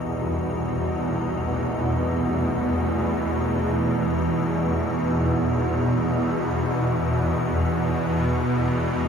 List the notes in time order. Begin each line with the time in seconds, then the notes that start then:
Already playing: C2 E2 B2 E3 D#4 E6
0.83 A3
8.23 G#3